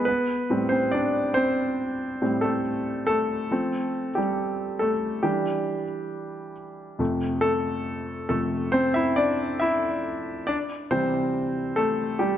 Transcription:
grand piano
0.05 B3 B4
0.50 A2 G3 C4
0.69 C4 C5
0.91 D4 D5
1.34 C4 C5
2.22 A2 G3 C4
2.41 A3 A4
3.07 A3 A4
3.51 F3 A3 C4
4.15 G3 G4
4.79 A3 A4
5.23 E3 G3 D4 G4
6.99 F2 C3 A3
7.41 A3 A4
8.29 F2 C3 A3 A4
8.72 C4 C5
8.94 E4 E5
9.16 D4 D5
9.60 E4 E5
10.47 D4 D5
10.91 C3 E3 G3 C4 C5
11.76 A3 A4
12.19 G3 G4

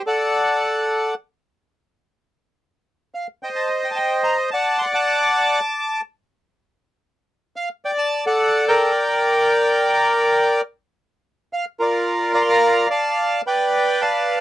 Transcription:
bandoneon
0.07 A4 D5 F#5
3.15 F5
3.43 C5 D#5 G5
3.56 A5
3.84 G5
3.91 A5
3.96 G5
4.24 A#5
4.51 D5 F#5 A5
4.78 C6
4.93 F#5 A5 D6
7.56 F5
7.85 D5 G5
7.98 A5
8.26 A4 D5 F#5
8.68 A#4 D5 G5
11.53 F5
11.80 F4 A#4 D5
12.34 D5 F5 A#5
12.41 C6
12.50 A#5
12.90 D5 F5 A5
13.47 B4 D5 G5
14.02 D5 F5 A5

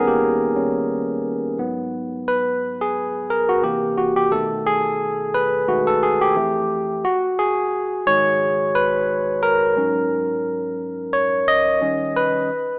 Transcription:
tine electric piano
Already playing: D#3 G3 B3 C#4 G#4 A#4
0.07 A#3 G4
0.56 D#3 G3 C#4
1.58 G#2 F#3 B3
2.28 B4
2.81 G#4
3.30 A#4
3.49 F#4
3.62 C3 E3 A#3 G4
3.98 F#4
4.16 G4
4.31 B2 D#3 A3 A4
4.66 G#4
5.34 B4
5.68 D#3 G#3 A3 F#4
5.87 A4
6.03 G#4
6.21 G4
6.35 F2 E3 A3
7.05 F#4
7.39 G#4
8.06 G#2 D#3 G#3 C#5
8.75 B4
9.43 A#4
9.76 G#2 F#3 C#4
11.13 C#5
11.48 D#5
11.81 D#3 G3 C#4
12.16 B4

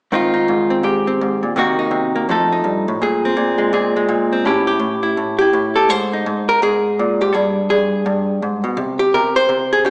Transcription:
hollow-body jazz guitar
0.12 G#2 D#3 C4 D#4 F4
0.34 D#4
0.48 G#2
0.70 C4
0.83 G#2 G4
1.07 C4
1.21 G#2
1.43 A#2
1.56 C3 D#3 A#3 D#4 F#4
1.79 D#4
1.91 C3
2.16 A#3
2.29 F2 F3 A3 D#4 A4
2.53 D#4
2.64 G2
2.88 A2
3.02 A#2 G#4
3.25 C4
3.37 A#2
3.58 G#3
3.73 A#2 G#4
3.96 G#3
4.09 A#2
4.33 C4
4.45 A2 C#4 E4 G4
4.67 G4
4.80 A2
5.03 E4
5.17 A2
5.39 E4 G4
5.53 A2
5.76 G4 A4
5.89 G#2 C5
6.13 D#4
6.26 G#2
6.49 A#4
6.62 G#2 G#4
6.99 A#2
7.21 G#2 G4
7.33 G2 G#4
7.70 G2 G#4
8.06 G2
8.42 G#2
8.64 B2
8.77 C3
8.99 G4
9.14 C3 A#4
9.36 C5
9.49 C3
9.73 G#4
9.85 C#3 G4

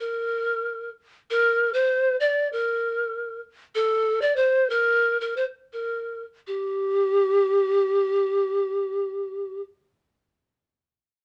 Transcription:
pan flute
0.00 A#4
1.31 A#4
1.74 C5
2.20 D5
2.53 A#4
3.75 A4
4.22 D5
4.36 C5
4.70 A#4
5.21 A#4
5.37 C5
5.73 A#4
6.47 G4

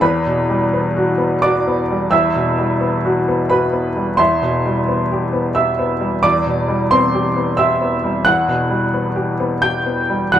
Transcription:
upright piano
0.01 E2 B4 B5
0.27 B2
0.49 G3
0.74 B3
0.96 F#4
1.18 B3
1.42 F#4 D5 D6
1.67 B3
1.90 G3
2.11 E2 E5 E6
2.36 B2
2.58 G3
2.81 B3
3.05 F#4
3.28 B3
3.49 F#4 B4 B5
3.73 B3
3.96 G3
4.17 E2 E5 C6
4.42 B2
4.66 G3
4.88 B3
5.12 G4
5.33 B3
5.55 G4 E5 E6
5.79 B3
6.01 G3
6.23 E2 D5 D6
6.46 B2
6.68 G3
6.91 B3 C4 C6
7.14 G4
7.36 B3
7.57 G4 E5 E6
7.81 B3
8.04 G3
8.25 E2 F#5 F#6
8.48 B2
8.70 G3
8.94 B3
9.16 G4
9.40 B3
9.62 G4 G5 G6
9.86 B3
10.10 G3
10.32 E2 F#5 F#6

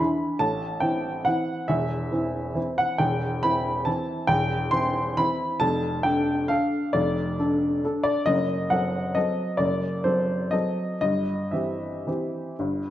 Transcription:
upright piano
Already playing: B5
0.00 E3 D4 E4
0.39 A1 A2 A5
0.80 E3 C4 E4 G5
1.25 E3 C4 E4 F#5
1.68 E1 E2 E5
2.12 E3 C4 E4
2.54 E3 C4 E4
2.78 F#5
2.98 E1 E2 G5
3.43 E3 C4 E4 B5
3.85 E3 C4 E4 A5
4.27 E1 E2 G5
4.71 E3 C4 E4 C6
5.17 E3 C4 E4 B5
5.60 F1 F2 A5
6.03 D3 D4 A4 G5
6.48 D3 D4 A4 F5
6.93 F1 F2 D5
7.39 D3 D4 A4
7.84 D3 D4 A4
8.03 D5
8.26 F#1 F#2 D#5
8.70 F#3 C4 A4 F#5
9.15 F#3 C4 A4 D#5
9.57 F#1 F#2 D5
10.04 F#3 C4 A4 C5
10.51 F#3 C4 A4 D#5
11.01 G1 G2 D#5
11.51 E3 C4 G4 E5
12.07 E3 C4 G4
12.59 G1 G2

